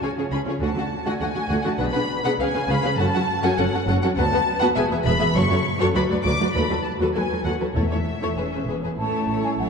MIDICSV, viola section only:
0, 0, Header, 1, 2, 480
1, 0, Start_track
1, 0, Key_signature, 3, "minor"
1, 0, Tempo, 594059
1, 497, Time_signature, 2, 2, 24, 8
1, 3373, Key_signature, 3, "major"
1, 5293, Tempo, 607287
1, 7777, End_track
2, 0, Start_track
2, 0, Title_t, "Viola section"
2, 0, Program_c, 0, 48
2, 10, Note_on_c, 0, 61, 46
2, 10, Note_on_c, 0, 65, 44
2, 59, Note_off_c, 0, 65, 0
2, 60, Note_off_c, 0, 61, 0
2, 130, Note_on_c, 0, 65, 41
2, 134, Note_on_c, 0, 61, 48
2, 179, Note_off_c, 0, 65, 0
2, 182, Note_off_c, 0, 61, 0
2, 250, Note_on_c, 0, 65, 66
2, 256, Note_on_c, 0, 61, 70
2, 299, Note_off_c, 0, 65, 0
2, 304, Note_off_c, 0, 61, 0
2, 369, Note_on_c, 0, 65, 44
2, 371, Note_on_c, 0, 61, 44
2, 418, Note_off_c, 0, 65, 0
2, 420, Note_off_c, 0, 61, 0
2, 485, Note_on_c, 0, 57, 58
2, 489, Note_on_c, 0, 66, 60
2, 535, Note_off_c, 0, 57, 0
2, 538, Note_off_c, 0, 66, 0
2, 614, Note_on_c, 0, 57, 45
2, 614, Note_on_c, 0, 66, 50
2, 662, Note_off_c, 0, 57, 0
2, 663, Note_off_c, 0, 66, 0
2, 853, Note_on_c, 0, 57, 70
2, 853, Note_on_c, 0, 66, 66
2, 902, Note_off_c, 0, 57, 0
2, 903, Note_off_c, 0, 66, 0
2, 978, Note_on_c, 0, 57, 53
2, 979, Note_on_c, 0, 66, 41
2, 1027, Note_off_c, 0, 57, 0
2, 1028, Note_off_c, 0, 66, 0
2, 1100, Note_on_c, 0, 66, 43
2, 1101, Note_on_c, 0, 57, 50
2, 1149, Note_off_c, 0, 66, 0
2, 1150, Note_off_c, 0, 57, 0
2, 1220, Note_on_c, 0, 66, 72
2, 1221, Note_on_c, 0, 57, 73
2, 1269, Note_off_c, 0, 57, 0
2, 1269, Note_off_c, 0, 66, 0
2, 1330, Note_on_c, 0, 57, 47
2, 1330, Note_on_c, 0, 66, 48
2, 1380, Note_off_c, 0, 66, 0
2, 1381, Note_off_c, 0, 57, 0
2, 1451, Note_on_c, 0, 62, 61
2, 1451, Note_on_c, 0, 68, 62
2, 1501, Note_off_c, 0, 62, 0
2, 1501, Note_off_c, 0, 68, 0
2, 1577, Note_on_c, 0, 62, 49
2, 1578, Note_on_c, 0, 68, 46
2, 1626, Note_off_c, 0, 62, 0
2, 1627, Note_off_c, 0, 68, 0
2, 1817, Note_on_c, 0, 62, 62
2, 1819, Note_on_c, 0, 68, 76
2, 1866, Note_off_c, 0, 62, 0
2, 1867, Note_off_c, 0, 68, 0
2, 1942, Note_on_c, 0, 61, 63
2, 1949, Note_on_c, 0, 68, 52
2, 1990, Note_off_c, 0, 61, 0
2, 1995, Note_off_c, 0, 68, 0
2, 2056, Note_on_c, 0, 68, 51
2, 2057, Note_on_c, 0, 61, 55
2, 2105, Note_off_c, 0, 61, 0
2, 2105, Note_off_c, 0, 68, 0
2, 2183, Note_on_c, 0, 61, 83
2, 2186, Note_on_c, 0, 68, 70
2, 2230, Note_off_c, 0, 61, 0
2, 2233, Note_off_c, 0, 68, 0
2, 2299, Note_on_c, 0, 61, 59
2, 2299, Note_on_c, 0, 68, 49
2, 2346, Note_off_c, 0, 68, 0
2, 2347, Note_off_c, 0, 61, 0
2, 2423, Note_on_c, 0, 66, 85
2, 2426, Note_on_c, 0, 61, 73
2, 2470, Note_off_c, 0, 66, 0
2, 2472, Note_off_c, 0, 61, 0
2, 2544, Note_on_c, 0, 61, 59
2, 2545, Note_on_c, 0, 66, 55
2, 2590, Note_off_c, 0, 61, 0
2, 2591, Note_off_c, 0, 66, 0
2, 2774, Note_on_c, 0, 61, 79
2, 2775, Note_on_c, 0, 66, 80
2, 2822, Note_off_c, 0, 61, 0
2, 2823, Note_off_c, 0, 66, 0
2, 2899, Note_on_c, 0, 61, 67
2, 2899, Note_on_c, 0, 66, 61
2, 2946, Note_off_c, 0, 61, 0
2, 2946, Note_off_c, 0, 66, 0
2, 3022, Note_on_c, 0, 61, 56
2, 3022, Note_on_c, 0, 66, 54
2, 3069, Note_off_c, 0, 61, 0
2, 3069, Note_off_c, 0, 66, 0
2, 3146, Note_on_c, 0, 61, 80
2, 3147, Note_on_c, 0, 66, 95
2, 3191, Note_off_c, 0, 61, 0
2, 3193, Note_off_c, 0, 66, 0
2, 3261, Note_on_c, 0, 61, 61
2, 3262, Note_on_c, 0, 66, 59
2, 3307, Note_off_c, 0, 61, 0
2, 3308, Note_off_c, 0, 66, 0
2, 3377, Note_on_c, 0, 66, 82
2, 3379, Note_on_c, 0, 59, 84
2, 3424, Note_off_c, 0, 66, 0
2, 3426, Note_off_c, 0, 59, 0
2, 3500, Note_on_c, 0, 66, 55
2, 3501, Note_on_c, 0, 59, 58
2, 3546, Note_off_c, 0, 66, 0
2, 3547, Note_off_c, 0, 59, 0
2, 3729, Note_on_c, 0, 59, 82
2, 3731, Note_on_c, 0, 66, 87
2, 3777, Note_off_c, 0, 59, 0
2, 3779, Note_off_c, 0, 66, 0
2, 3857, Note_on_c, 0, 59, 64
2, 3858, Note_on_c, 0, 68, 72
2, 3904, Note_off_c, 0, 59, 0
2, 3904, Note_off_c, 0, 68, 0
2, 3964, Note_on_c, 0, 59, 50
2, 3964, Note_on_c, 0, 68, 66
2, 4013, Note_off_c, 0, 59, 0
2, 4014, Note_off_c, 0, 68, 0
2, 4088, Note_on_c, 0, 59, 84
2, 4089, Note_on_c, 0, 68, 89
2, 4136, Note_off_c, 0, 59, 0
2, 4137, Note_off_c, 0, 68, 0
2, 4198, Note_on_c, 0, 59, 60
2, 4199, Note_on_c, 0, 68, 54
2, 4248, Note_off_c, 0, 59, 0
2, 4249, Note_off_c, 0, 68, 0
2, 4318, Note_on_c, 0, 54, 84
2, 4322, Note_on_c, 0, 66, 82
2, 4368, Note_off_c, 0, 54, 0
2, 4372, Note_off_c, 0, 66, 0
2, 4439, Note_on_c, 0, 66, 55
2, 4442, Note_on_c, 0, 54, 59
2, 4490, Note_off_c, 0, 66, 0
2, 4492, Note_off_c, 0, 54, 0
2, 4688, Note_on_c, 0, 54, 81
2, 4688, Note_on_c, 0, 66, 82
2, 4738, Note_off_c, 0, 54, 0
2, 4738, Note_off_c, 0, 66, 0
2, 4801, Note_on_c, 0, 66, 61
2, 4807, Note_on_c, 0, 54, 67
2, 4852, Note_off_c, 0, 66, 0
2, 4857, Note_off_c, 0, 54, 0
2, 4922, Note_on_c, 0, 66, 50
2, 4925, Note_on_c, 0, 54, 59
2, 4973, Note_off_c, 0, 66, 0
2, 4975, Note_off_c, 0, 54, 0
2, 5039, Note_on_c, 0, 54, 82
2, 5039, Note_on_c, 0, 66, 70
2, 5090, Note_off_c, 0, 54, 0
2, 5090, Note_off_c, 0, 66, 0
2, 5167, Note_on_c, 0, 54, 52
2, 5170, Note_on_c, 0, 66, 53
2, 5217, Note_off_c, 0, 54, 0
2, 5219, Note_off_c, 0, 66, 0
2, 5292, Note_on_c, 0, 66, 74
2, 5296, Note_on_c, 0, 54, 75
2, 5340, Note_off_c, 0, 66, 0
2, 5343, Note_off_c, 0, 54, 0
2, 5412, Note_on_c, 0, 54, 51
2, 5413, Note_on_c, 0, 66, 47
2, 5459, Note_off_c, 0, 54, 0
2, 5460, Note_off_c, 0, 66, 0
2, 5649, Note_on_c, 0, 66, 67
2, 5651, Note_on_c, 0, 54, 65
2, 5697, Note_off_c, 0, 66, 0
2, 5698, Note_off_c, 0, 54, 0
2, 5773, Note_on_c, 0, 54, 53
2, 5774, Note_on_c, 0, 66, 49
2, 5820, Note_off_c, 0, 54, 0
2, 5821, Note_off_c, 0, 66, 0
2, 5897, Note_on_c, 0, 66, 48
2, 5899, Note_on_c, 0, 54, 44
2, 5944, Note_off_c, 0, 66, 0
2, 5945, Note_off_c, 0, 54, 0
2, 6002, Note_on_c, 0, 66, 62
2, 6004, Note_on_c, 0, 54, 59
2, 6052, Note_off_c, 0, 66, 0
2, 6054, Note_off_c, 0, 54, 0
2, 6120, Note_on_c, 0, 66, 42
2, 6122, Note_on_c, 0, 54, 38
2, 6171, Note_off_c, 0, 66, 0
2, 6173, Note_off_c, 0, 54, 0
2, 6243, Note_on_c, 0, 64, 54
2, 6244, Note_on_c, 0, 57, 60
2, 6293, Note_off_c, 0, 64, 0
2, 6294, Note_off_c, 0, 57, 0
2, 6375, Note_on_c, 0, 64, 39
2, 6376, Note_on_c, 0, 57, 38
2, 6424, Note_off_c, 0, 57, 0
2, 6424, Note_off_c, 0, 64, 0
2, 6613, Note_on_c, 0, 57, 57
2, 6614, Note_on_c, 0, 64, 54
2, 6662, Note_off_c, 0, 57, 0
2, 6663, Note_off_c, 0, 64, 0
2, 6735, Note_on_c, 0, 61, 54
2, 6961, Note_off_c, 0, 61, 0
2, 6982, Note_on_c, 0, 59, 44
2, 7213, Note_on_c, 0, 57, 33
2, 7213, Note_on_c, 0, 64, 34
2, 7221, Note_off_c, 0, 59, 0
2, 7443, Note_off_c, 0, 57, 0
2, 7448, Note_off_c, 0, 64, 0
2, 7453, Note_on_c, 0, 57, 36
2, 7458, Note_on_c, 0, 64, 34
2, 7684, Note_off_c, 0, 64, 0
2, 7687, Note_off_c, 0, 57, 0
2, 7693, Note_on_c, 0, 64, 36
2, 7696, Note_on_c, 0, 57, 37
2, 7777, Note_off_c, 0, 57, 0
2, 7777, Note_off_c, 0, 64, 0
2, 7777, End_track
0, 0, End_of_file